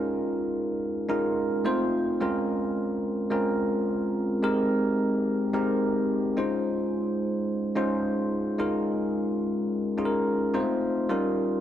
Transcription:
0.00 0.70 G#3 medium
0.00 0.70 C#4 medium
0.00 0.70 D#4 medium
0.00 0.71 F4 medium
0.00 0.71 A#4 medium
1.09 1.65 G#3 medium
1.09 1.65 C#4 medium
1.09 1.64 D#4 medium
1.09 1.65 F4 medium
1.09 1.65 A#4 medium
1.65 2.15 A3 medium
1.65 2.15 C4 medium
1.65 2.15 D#4 medium
1.65 2.15 F4 medium
1.65 2.15 C5 loud
2.20 3.20 G#3 medium
2.20 3.21 C4 medium
2.20 3.21 C#4 medium
2.20 3.21 F4 medium
2.20 3.21 A#4 medium
3.31 4.31 G#3 medium
3.31 4.31 C4 medium
3.31 4.31 C#4 medium
3.31 4.32 F4 medium
3.31 4.32 A#4 medium
4.43 5.43 G#3 medium
4.43 5.43 C4 medium
4.43 5.43 D#4 medium
4.43 5.43 G4 medium
4.43 5.43 A#4 loud
5.53 6.36 G#3 medium
5.53 6.37 C4 medium
5.53 6.36 D#4 medium
5.53 6.37 G4 medium
5.53 6.37 A#4 medium
6.37 7.37 G#3 medium
6.37 7.37 C#4 medium
6.37 7.37 D#4 medium
6.37 7.37 F4 medium
6.37 7.38 C5 medium
7.75 8.57 G#3 medium
7.75 8.58 C#4 medium
7.75 8.58 D#4 medium
7.75 8.58 F4 medium
7.75 8.60 C5 medium
8.58 9.59 G#3 medium
8.58 9.59 C#4 medium
8.58 9.59 D#4 medium
8.58 9.60 F4 medium
8.58 9.60 A#4 medium
9.98 10.53 G#3 medium
9.98 10.54 C#4 medium
9.98 10.53 D#4 medium
9.98 10.53 F4 medium
9.98 10.05 G#4 medium
10.05 10.57 A#4 medium
10.54 10.60 G#3 medium
10.54 11.04 C4 medium
10.54 11.04 D#4 medium
10.54 11.04 F4 medium
10.54 11.04 C5 loud
10.60 11.07 A3 medium
11.09 11.60 G3 medium
11.09 11.60 C#4 medium
11.09 11.60 D#4 medium
11.09 11.60 F4 medium
11.09 11.60 A#4 medium

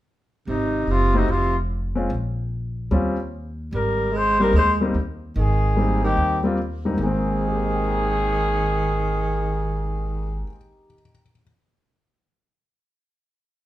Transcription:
0.47 0.85 G#1 medium
0.47 0.88 C3 medium
0.47 0.93 D#4 medium
0.87 1.26 F#1 medium
0.87 1.15 C3 medium
0.91 1.19 F4 medium
1.14 1.29 C3 medium
1.14 1.27 A3 medium
1.14 1.27 C4 medium
1.14 1.28 D#4 medium
1.14 1.32 D#4 medium
1.14 1.28 F#4 medium
1.28 2.06 F1 medium
1.28 1.56 C3 medium
1.28 1.56 F4 medium
1.95 2.09 G#3 medium
1.95 2.09 C4 medium
1.95 2.09 C#4 medium
1.95 2.10 F4 medium
2.10 2.88 A#1 medium
2.91 3.69 D#2 medium
2.91 3.15 G3 medium
2.91 3.16 C4 medium
2.91 3.16 C#4 medium
2.91 3.16 F4 medium
3.73 4.50 G#1 medium
3.73 4.14 G3 medium
3.73 4.18 A#4 medium
4.12 4.39 G#3 medium
4.17 4.42 C5 medium
4.40 4.53 G3 medium
4.40 4.54 G3 medium
4.40 4.53 A#3 medium
4.40 4.53 C4 soft
4.40 4.54 D#4 medium
4.40 4.55 A#4 medium
4.53 4.92 D#2 medium
4.53 4.80 G#3 medium
4.58 4.73 C5 medium
4.81 4.94 G3 medium
4.81 4.94 A#3 medium
4.81 4.94 C4 medium
4.81 4.95 D#4 medium
4.94 5.33 D#2 medium
5.36 6.13 G#1 medium
5.36 5.99 D#3 medium
5.36 6.01 G#4 medium
5.76 6.39 G3 medium
5.76 6.39 A#3 soft
5.76 6.39 C4 soft
5.76 6.39 D#4 medium
6.03 6.41 D#3 medium
6.03 6.42 G4 medium
6.17 6.95 D#2 medium
6.43 6.57 G3 medium
6.43 6.57 A#3 medium
6.43 6.57 C4 medium
6.43 6.58 F4 medium
6.85 6.93 G#2 medium
6.85 6.98 G3 soft
6.85 6.98 A#3 soft
6.85 6.98 C4 soft
6.85 6.98 D#4 medium
6.94 10.43 G#1 medium
6.94 10.43 G#2 medium
6.94 10.46 D#3 medium
6.99 10.44 D#3 medium
6.99 10.49 G#3 soft
6.99 10.52 A#3 medium
6.99 10.46 G#4 medium
7.06 10.55 C4 medium
7.40 10.85 D#4 soft
7.48 10.93 G4 soft
7.56 11.01 A#4 soft
7.65 11.10 D#5 soft
7.76 11.20 G5 soft
7.87 11.31 A#5 soft
7.98 11.43 D#6 soft

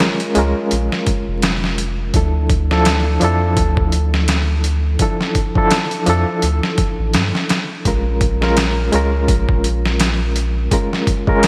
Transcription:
0.00 0.35 G#3 medium
0.00 0.36 C#4 medium
0.00 0.37 F4 medium
0.00 0.39 A#4 medium
0.00 snare loud
0.20 closed hi-hat soft
0.35 0.54 C#2 medium
0.35 2.10 G#3 medium
0.35 2.11 C#4 medium
0.35 2.11 F4 medium
0.35 2.12 A#4 medium
0.35 closed hi-hat medium
0.71 0.90 A#1 medium
0.71 closed hi-hat medium
0.92 snare soft
1.07 kick medium
1.07 closed hi-hat medium
1.28 2.11 F1 medium
1.42 snare loud
1.42 closed hi-hat medium
1.64 snare soft
1.78 closed hi-hat medium
2.14 3.18 D2 medium
2.14 2.66 F3 medium
2.14 2.66 D4 medium
2.14 2.66 E4 medium
2.14 2.66 A4 medium
2.14 kick loud
2.14 closed hi-hat medium
2.50 kick medium
2.50 closed hi-hat medium
2.71 3.18 F3 medium
2.71 3.18 D4 medium
2.71 3.18 E4 medium
2.71 3.19 A4 loud
2.71 snare soft
2.85 snare loud
2.85 closed hi-hat medium
3.21 3.59 F2 medium
3.21 4.96 F3 medium
3.21 4.96 D4 medium
3.21 4.97 E4 medium
3.21 4.98 A4 medium
3.21 closed hi-hat medium
3.57 4.97 D2 loud
3.57 kick loud
3.57 closed hi-hat medium
3.77 kick medium
3.92 closed hi-hat medium
4.14 snare soft
4.28 snare loud
4.28 closed hi-hat medium
4.64 closed hi-hat medium
4.99 5.51 F3 medium
4.99 5.52 D4 medium
4.99 5.52 E4 medium
4.99 5.52 A4 medium
4.99 kick loud
4.99 closed hi-hat medium
5.21 snare soft
5.35 kick medium
5.35 closed hi-hat medium
5.55 6.03 F3 medium
5.55 6.04 D4 medium
5.55 6.04 E4 medium
5.55 6.04 A4 medium
5.55 kick medium
5.70 snare loud
5.70 closed hi-hat medium
5.91 closed hi-hat soft
6.06 6.25 F2 medium
6.06 7.81 F3 medium
6.06 7.82 D4 medium
6.06 7.83 E4 medium
6.06 7.83 A4 medium
6.06 closed hi-hat medium
6.42 6.61 D2 medium
6.42 closed hi-hat medium
6.63 snare soft
6.78 kick medium
6.78 closed hi-hat medium
6.99 7.16 A1 loud
7.13 7.32 G2 medium
7.13 snare loud
7.13 closed hi-hat medium
7.35 snare soft
7.49 snare medium
7.49 closed hi-hat medium
7.85 8.90 A#1 loud
7.85 8.37 G#3 medium
7.85 8.37 C#4 medium
7.85 8.37 F4 medium
7.85 8.38 A#4 medium
7.85 kick loud
7.85 closed hi-hat medium
8.21 kick medium
8.21 closed hi-hat medium
8.42 8.89 G#3 medium
8.42 8.89 C#4 medium
8.42 8.90 F4 medium
8.42 8.90 A#4 medium
8.42 snare soft
8.57 snare loud
8.57 closed hi-hat medium
8.92 9.30 C#2 medium
8.92 10.67 G#3 medium
8.92 10.68 C#4 medium
8.92 10.68 F4 medium
8.92 10.69 A#4 medium
8.92 closed hi-hat medium
9.28 10.68 A#1 medium
9.28 kick loud
9.28 closed hi-hat medium
9.49 kick medium
9.64 closed hi-hat medium
9.86 snare medium
10.00 snare loud
10.00 closed hi-hat medium
10.36 closed hi-hat medium
10.71 11.23 G#3 medium
10.71 11.23 C#4 medium
10.71 11.23 F4 medium
10.71 11.23 A#4 medium
10.71 kick medium
10.71 closed hi-hat medium
10.93 snare soft
11.07 kick medium
11.07 closed hi-hat medium
11.27 11.48 G#3 medium
11.27 11.48 C#4 medium
11.27 11.48 F4 medium
11.27 11.48 A#4 medium
11.27 kick medium
11.43 snare loud
11.43 closed hi-hat medium

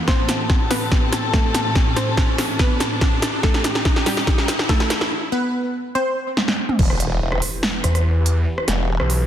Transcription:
0.00 5.07 E3 medium
0.00 riser medium
0.08 5.07 A2 medium
0.08 5.07 C3 medium
0.08 0.63 C4 medium
0.08 3.40 A4 medium
0.08 0.63 C5 loud
0.08 kick medium
0.08 snare medium
0.29 snare medium
0.29 closed hi-hat medium
0.50 kick medium
0.50 snare medium
0.71 1.26 B3 medium
0.71 1.26 B4 medium
0.71 snare medium
0.71 open hi-hat medium
0.92 kick medium
0.92 snare medium
1.13 snare medium
1.13 closed hi-hat medium
1.33 1.89 A3 medium
1.33 1.89 A4 medium
1.33 kick medium
1.33 snare medium
1.54 snare medium
1.54 closed hi-hat medium
1.75 kick medium
1.75 snare medium
1.96 2.51 C4 medium
1.96 2.51 C5 medium
1.96 snare medium
1.96 closed hi-hat medium
2.17 kick loud
2.17 snare medium
2.38 snare medium
2.38 open hi-hat medium
2.59 3.35 B3 medium
2.59 3.35 B4 loud
2.59 kick medium
2.59 snare medium
2.80 snare medium
2.80 closed hi-hat medium
3.01 kick medium
3.01 snare medium
3.22 snare medium
3.22 closed hi-hat medium
3.43 3.98 A3 medium
3.43 5.10 G4 loud
3.43 3.98 A4 loud
3.43 kick loud
3.43 snare medium
3.54 snare medium
3.64 snare medium
3.64 closed hi-hat medium
3.75 snare medium
3.85 kick medium
3.85 snare medium
3.96 snare medium
4.06 4.61 G3 medium
4.06 4.61 G4 medium
4.06 snare medium
4.06 open hi-hat loud
4.17 snare medium
4.27 kick loud
4.27 snare loud
4.38 snare medium
4.48 snare loud
4.48 closed hi-hat medium
4.59 snare medium
4.69 5.24 A3 medium
4.69 5.24 A4 medium
4.69 kick loud
4.69 snare loud
4.80 snare medium
4.90 snare loud
4.90 closed hi-hat medium
5.01 snare medium
5.32 5.87 B3 medium
5.32 5.87 B4 loud
5.95 6.71 C4 medium
5.95 6.71 C5 loud
6.37 snare medium
6.48 snare medium
6.69 mid tom medium
6.79 7.19 E1 loud
6.79 9.27 E3 medium
6.79 9.27 E4 medium
6.79 9.27 G4 medium
6.79 9.27 B4 loud
6.79 kick loud
6.79 crash loud
6.79 impact medium
6.90 cross-stick medium
7.00 closed hi-hat medium
7.21 7.40 E1 medium
7.32 cross-stick medium
7.42 open hi-hat loud
7.63 snare loud
7.84 8.45 E2 medium
7.84 cross-stick medium
7.84 closed hi-hat medium
7.95 cross-stick medium
7.95 closed hi-hat soft
8.26 closed hi-hat medium
8.58 cross-stick medium
8.68 8.98 E1 loud
8.68 snare medium
8.68 closed hi-hat medium
9.00 9.27 B1 medium
9.00 cross-stick medium
9.10 open hi-hat medium

